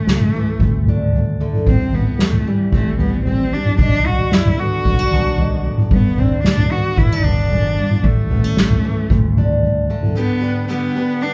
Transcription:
Already playing: steel-string acoustic guitar A2 C#4 E4, cello A3
0.07 fingered electric bass C#2, snare
0.20 floor tom, mid tom
0.35 steel-string acoustic guitar E3 A3
0.59 fingered electric bass D2, steel-string acoustic guitar D2, kick, floor tom, mid tom
0.86 steel-string acoustic guitar D4, floor tom, mid tom
1.13 floor tom
1.40 steel-string acoustic guitar D3 A3
1.53 mid tom
1.66 fingered electric bass A1, steel-string acoustic guitar A2, cello C4, kick, floor tom
1.93 cello B3, steel-string acoustic guitar C4, floor tom
2.19 fingered electric bass E2, cello A3, snare
2.33 floor tom, mid tom
2.46 steel-string acoustic guitar E3 G3, cello G3
2.72 fingered electric bass A1, cello A3, steel-string acoustic guitar C4, kick, floor tom
2.99 steel-string acoustic guitar E2 G3, cello B3, floor tom
3.26 cello C4, steel-string acoustic guitar C4, floor tom
3.53 steel-string acoustic guitar G3, cello D4
3.65 mid tom
3.78 fingered electric bass B1, steel-string acoustic guitar B2, cello D4, kick, floor tom
4.05 steel-string acoustic guitar D4, cello F#4, floor tom
4.32 fingered electric bass F#2, cello E4, snare
4.45 floor tom, mid tom
4.59 steel-string acoustic guitar D3 B3, cello F#4
4.85 fingered electric bass B1, steel-string acoustic guitar B3, kick, floor tom
4.99 steel-string acoustic guitar D4
5.12 steel-string acoustic guitar F#2 B3, floor tom
5.38 steel-string acoustic guitar B2, floor tom
5.65 steel-string acoustic guitar A2
5.78 mid tom
5.90 fingered electric bass G1, steel-string acoustic guitar G2, cello B3, kick, floor tom
6.18 cello C4, steel-string acoustic guitar D4, floor tom
6.44 fingered electric bass D2, cello D4, snare
6.58 floor tom, mid tom
6.71 steel-string acoustic guitar D3 B3, cello F#4
6.97 fingered electric bass G1, steel-string acoustic guitar B3, cello E4, kick, floor tom
7.12 steel-string acoustic guitar D4
7.24 steel-string acoustic guitar D2 B3, cello D4, floor tom
7.51 steel-string acoustic guitar F#2, floor tom
7.78 steel-string acoustic guitar G2
7.91 mid tom
8.04 fingered electric bass A1, steel-string acoustic guitar A2, cello A3, kick, floor tom
8.31 steel-string acoustic guitar B3, floor tom
8.44 steel-string acoustic guitar C#4
8.57 fingered electric bass A1, snare
8.70 floor tom, mid tom
8.84 steel-string acoustic guitar E3 A3
9.10 steel-string acoustic guitar D2, fingered electric bass D2, kick, floor tom, mid tom
9.37 steel-string acoustic guitar D4, floor tom, mid tom
9.63 floor tom
9.90 steel-string acoustic guitar D3 A3
10.03 mid tom
10.16 twelve-string acoustic guitar G2 D3 G3 B3 D4 G4, cello B3
10.41 twelve-string acoustic guitar G3 B3 D4 G4
10.68 twelve-string acoustic guitar G2 D3 G3 B3 D4 G4, cello B3
10.95 twelve-string acoustic guitar G3 B3 D4 G4
11.21 twelve-string acoustic guitar G3 B3 D4 G4, cello D4

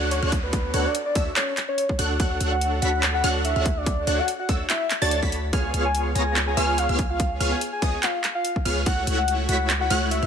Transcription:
Already playing: 808-style bass D2, supersaw synth D4 F#4 A4 C#5 F#5, synth pluck F#6, downlifter
0.11 soft synth lead C#5, closed hi-hat
0.22 808-style bass D2, supersaw synth D4 F#4 A4 C#5 F#5, synth pluck F#6
0.32 kick, closed hi-hat
0.44 soft synth lead B4
0.53 kick, closed hi-hat
0.74 808-style bass D2, supersaw synth D4 F#4 A4 C#5 F#5, synth pluck F#6, closed hi-hat
0.85 soft synth lead D5
0.95 closed hi-hat
1.06 soft synth lead D5
1.15 808-style bass D2, supersaw synth D4 F#4 A4 C#5 E5, synth pluck E6, kick, closed hi-hat
1.36 soft synth lead C#5, clap, closed hi-hat
1.57 clap, closed hi-hat
1.69 soft synth lead C#5
1.78 closed hi-hat
1.89 kick
1.99 808-style bass D2, supersaw synth D4 F#4 A4 C#5 F#5, synth pluck F#6, closed hi-hat
2.20 808-style bass D2, supersaw synth D4 F#4 A4 C#5 F#5, soft synth lead F#5, synth pluck F#6, kick, closed hi-hat
2.40 808-style bass D2, supersaw synth D4 F#4 A4 C#5 F#5, synth pluck F#6, closed hi-hat
2.52 soft synth lead F#5
2.61 closed hi-hat
2.82 808-style bass D2, supersaw synth D4 F#4 A4 C#5 B5, soft synth lead F#5, synth pluck B6, closed hi-hat
3.03 clap, closed hi-hat
3.14 soft synth lead F#5
3.24 808-style bass D2, supersaw synth D4 F#4 A4 C#5 F#5, synth pluck F#6, closed hi-hat
3.45 soft synth lead E5, closed hi-hat
3.56 808-style bass D2, supersaw synth D4 F#4 A4 C#5 F#5, synth pluck F#6
3.66 kick, closed hi-hat
3.77 soft synth lead D5
3.86 kick, closed hi-hat
4.07 808-style bass D2, supersaw synth D4 F#4 A4 C#5 F#5, synth pluck F#6, closed hi-hat
4.19 soft synth lead F#5
4.28 closed hi-hat
4.39 soft synth lead F#5
4.49 808-style bass D2, supersaw synth D4 F#4 A4 C#5 E5, synth pluck E6, kick, closed hi-hat
4.70 soft synth lead E5, clap, closed hi-hat
4.90 clap, closed hi-hat
5.02 808-style bass D2, supersaw synth D4 F#4 A4 C#5 A5, soft synth lead D5, synth pluck A6
5.11 closed hi-hat
5.22 808-style bass D2, supersaw synth D4 F#4 A4 C#5 B5, synth pluck B6, kick
5.32 closed hi-hat
5.53 808-style bass C#2, supersaw synth B3 F4 G#4 C#5 F5, soft synth lead G#5, synth pluck F6, kick, closed hi-hat
5.74 808-style bass C#2, supersaw synth B3 F4 G#4 C#5 F5, synth pluck F6, closed hi-hat
5.85 soft synth lead G#5
5.95 closed hi-hat
6.15 808-style bass C#2, supersaw synth B3 F4 G#4 C#5 A#5, soft synth lead G#5, synth pluck A#6, closed hi-hat
6.36 clap, closed hi-hat
6.47 soft synth lead G#5
6.57 808-style bass C#2, supersaw synth B3 F4 G#4 C#5 F5, synth pluck F6, closed hi-hat
6.78 soft synth lead F5, closed hi-hat
6.89 808-style bass C#2, supersaw synth B3 F4 G#4 C#5 F5, synth pluck F6
6.99 kick, closed hi-hat
7.10 soft synth lead F5
7.20 kick, closed hi-hat
7.40 808-style bass C#2, supersaw synth B3 F4 G#4 C#5 F5, synth pluck F6, closed hi-hat
7.52 soft synth lead G#5
7.61 closed hi-hat
7.73 soft synth lead G#5
7.82 808-style bass C#2, supersaw synth B3 F4 G#4 C#5 D#5, synth pluck D#6, kick, closed hi-hat
8.03 soft synth lead F5, clap, closed hi-hat
8.24 clap, closed hi-hat
8.35 soft synth lead F5
8.45 closed hi-hat
8.56 kick
8.65 808-style bass C#2, supersaw synth B3 F4 G#4 C#5 F5, synth pluck F6, closed hi-hat
8.86 808-style bass C#2, supersaw synth A3 E4 F#4 C#5 F#5, soft synth lead F#5, synth pluck F#6, kick, closed hi-hat
9.07 808-style bass C#2, supersaw synth A3 E4 F#4 C#5 F#5, synth pluck F#6, closed hi-hat
9.18 soft synth lead F#5
9.28 closed hi-hat
9.49 808-style bass C#2, supersaw synth A3 E4 F#4 C#5 B5, soft synth lead F#5, synth pluck B6, closed hi-hat
9.70 clap, closed hi-hat
9.81 soft synth lead F#5
9.90 808-style bass C#2, supersaw synth A3 E4 F#4 C#5 F#5, synth pluck F#6, closed hi-hat
10.11 soft synth lead E5, closed hi-hat
10.23 808-style bass C#2, supersaw synth A3 E4 F#4 C#5 F#5, synth pluck F#6

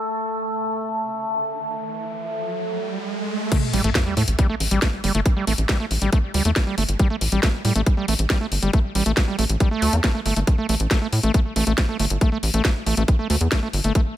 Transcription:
Already playing: synth drone A3 A4
0.04 riser
3.52 acid bass A3, kick, closed hi-hat, crash, sub drop
3.73 analog synth bass A1, acid bass G3, open hi-hat
3.84 analog synth bass A1, acid bass A3, closed hi-hat
3.95 kick, snare, closed hi-hat
4.06 acid bass G3
4.17 analog synth bass A2, acid bass A3, open hi-hat
4.28 analog synth bass A1, closed hi-hat
4.39 acid bass G3, kick, closed hi-hat
4.50 acid bass A3
4.60 analog synth bass A1, open hi-hat
4.71 analog synth bass A1, acid bass G3, closed hi-hat
4.82 acid bass A3, kick, snare, closed hi-hat
5.04 analog synth bass G1, acid bass G3, open hi-hat
5.15 analog synth bass G1, acid bass A3, closed hi-hat
5.26 kick, closed hi-hat
5.36 acid bass G3
5.47 analog synth bass A1, acid bass A3, open hi-hat
5.58 analog synth bass A1, closed hi-hat
5.69 acid bass G3, kick, snare, closed hi-hat
5.80 acid bass A3
5.91 analog synth bass A1, open hi-hat
6.02 analog synth bass A1, acid bass G3, closed hi-hat
6.12 acid bass A3, kick, closed hi-hat
6.34 analog synth bass D2, acid bass G3, open hi-hat
6.45 analog synth bass E2, acid bass A3, closed hi-hat
6.56 kick, snare, closed hi-hat
6.67 acid bass G3
6.78 analog synth bass G1, acid bass A3, open hi-hat
6.89 analog synth bass G1, closed hi-hat
6.99 acid bass G3, kick, closed hi-hat
7.10 acid bass A3
7.21 analog synth bass A1, open hi-hat
7.32 analog synth bass A1, acid bass G3, closed hi-hat
7.43 acid bass A3, kick, snare, closed hi-hat
7.65 analog synth bass A2, acid bass G3, open hi-hat
7.76 analog synth bass A1, acid bass A3, closed hi-hat
7.86 kick, closed hi-hat
7.97 acid bass G3
8.08 analog synth bass A1, acid bass A3, open hi-hat
8.19 analog synth bass A1, closed hi-hat
8.30 acid bass G3, kick, snare, closed hi-hat
8.41 acid bass A3
8.52 analog synth bass G1, open hi-hat
8.63 analog synth bass G1, acid bass G3, closed hi-hat
8.73 acid bass A3, kick, closed hi-hat
8.95 analog synth bass A1, acid bass G3, open hi-hat
9.06 analog synth bass A1, acid bass A3, closed hi-hat
9.17 kick, snare, closed hi-hat
9.28 acid bass G3
9.39 analog synth bass A1, acid bass A3, open hi-hat
9.49 analog synth bass A1, closed hi-hat
9.60 acid bass G3, kick, closed hi-hat
9.71 acid bass A3
9.82 analog synth bass D2, open hi-hat
9.93 analog synth bass E2, acid bass A#3, closed hi-hat
10.04 acid bass A#3, kick, snare, closed hi-hat
10.15 acid bass A3
10.26 analog synth bass G1, acid bass A3, open hi-hat
10.36 analog synth bass G1, acid bass A3, closed hi-hat
10.47 kick, closed hi-hat
10.58 acid bass A3
10.69 analog synth bass A1, acid bass A3, open hi-hat
10.80 analog synth bass A1, closed hi-hat
10.91 acid bass A3, kick, snare, closed hi-hat
11.02 acid bass A3
11.13 analog synth bass A2, open hi-hat
11.23 analog synth bass A1, acid bass A3, closed hi-hat
11.34 kick, closed hi-hat
11.56 analog synth bass A1, acid bass A3, open hi-hat
11.67 analog synth bass A1, acid bass A3, closed hi-hat
11.78 kick, snare, closed hi-hat
11.89 acid bass A3
11.99 analog synth bass G1, acid bass A3, open hi-hat
12.10 analog synth bass G1, closed hi-hat
12.21 acid bass A3, kick, closed hi-hat
12.32 acid bass A3
12.43 analog synth bass A1, open hi-hat
12.54 analog synth bass A1, acid bass A3, closed hi-hat
12.65 kick, snare, closed hi-hat
12.86 analog synth bass A1, acid bass A3, open hi-hat
12.97 analog synth bass A1, acid bass A3, closed hi-hat
13.08 kick, closed hi-hat
13.19 acid bass A3
13.30 analog synth bass D2, acid bass A3, open hi-hat
13.41 analog synth bass E2, closed hi-hat
13.52 acid bass A3, kick, snare, closed hi-hat
13.63 acid bass A3
13.73 analog synth bass G1, open hi-hat
13.84 analog synth bass G1, acid bass A3, closed hi-hat
13.95 kick, closed hi-hat

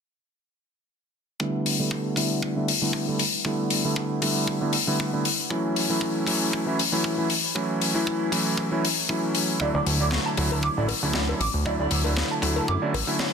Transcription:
1.40 electric grand piano D3 G3 A3 B3 E4, kick
1.66 open hi-hat
1.79 electric grand piano D3 G3 A3 B3 E4
1.91 kick
2.16 electric grand piano D3 G3 A3 B3 E4, kick, open hi-hat
2.42 kick
2.56 electric grand piano D3 G3 A3 B3 E4
2.68 open hi-hat
2.82 electric grand piano D3 G3 A3 B3 E4
2.93 kick
3.07 electric grand piano D3 G3 A3 B3 E4
3.19 open hi-hat
3.45 electric grand piano D3 G3 A3 B3 E4, kick
3.70 open hi-hat
3.85 electric grand piano D3 G3 A3 B3 E4
3.96 kick
4.21 electric grand piano D3 G3 A3 B3 E4, kick, open hi-hat
4.47 kick
4.61 electric grand piano D3 G3 A3 B3 E4
4.73 open hi-hat
4.87 electric grand piano D3 G3 A3 B3 E4
5.00 kick
5.13 electric grand piano D3 G3 A3 B3 E4
5.25 open hi-hat
5.50 electric grand piano E3 F#3 A3 C#4 E4, kick
5.76 open hi-hat
5.89 electric grand piano E3 F#3 A3 C#4 E4
6.01 kick
6.26 electric grand piano E3 F#3 A3 C#4 E4, kick, open hi-hat
6.53 kick
6.66 electric grand piano E3 F#3 A3 C#4 E4
6.79 open hi-hat
6.92 electric grand piano E3 F#3 A3 C#4 E4
7.04 kick
7.18 electric grand piano E3 F#3 A3 C#4 E4
7.30 open hi-hat
7.55 electric grand piano E3 F#3 A3 C#4 E4, kick
7.82 open hi-hat
7.94 electric grand piano E3 F#3 A3 C#4 E4
8.07 kick
8.32 electric grand piano E3 F#3 A3 C#4 E4, kick, open hi-hat
8.57 kick
8.71 electric grand piano E3 F#3 A3 C#4 E4
8.85 open hi-hat
9.09 electric grand piano E3 F#3 A3 C#4 E4, kick
9.35 open hi-hat
9.60 analog synth bass D2, electric grand piano D3 F#3 A3 E4, clean electric guitar D5, kick
9.74 analog synth bass D2, clean electric guitar D5
9.86 analog synth bass D2, clean electric guitar A4, open hi-hat
10.00 electric grand piano D3 F#3 A3 E4, clean electric guitar D5
10.11 clean electric guitar C#5, kick, snare
10.26 clean electric guitar A5
10.37 analog synth bass D2, electric grand piano D3 F#3 A3 E4, kick, open hi-hat
10.52 clean electric guitar A5, cowbell
10.63 clean electric guitar D6, kick
10.77 analog synth bass A1, electric grand piano D3 F#3 A3 C#4 E4, clean electric guitar D5
10.88 open hi-hat, cowbell
11.02 analog synth bass D2, electric grand piano D3 F#3 A3 C#4 E4
11.13 clean electric guitar C#5, kick, snare
11.28 electric grand piano D3 F#3 A3 C#4 E4, cowbell
11.40 analog synth bass A1, clean electric guitar D6, open hi-hat
11.54 analog synth bass D2
11.65 analog synth bass D2, electric grand piano D3 F#3 A3 E4, clean electric guitar D5, kick
11.79 analog synth bass D2, clean electric guitar D5
11.91 analog synth bass D2, clean electric guitar A4, open hi-hat
12.04 electric grand piano D3 F#3 A3 E4, clean electric guitar D5, cowbell
12.17 clean electric guitar C#5, kick, snare
12.31 clean electric guitar A5
12.42 analog synth bass D2, electric grand piano D3 F#3 A3 E4, kick, open hi-hat
12.56 clean electric guitar A5, cowbell
12.68 analog synth bass F#2, clean electric guitar D6, kick
12.82 electric grand piano D3 F#3 A3 C#4 E4, clean electric guitar D5
12.94 analog synth bass A1, open hi-hat, cowbell
13.07 electric grand piano D3 F#3 A3 C#4 E4
13.19 clean electric guitar C#5, kick, snare

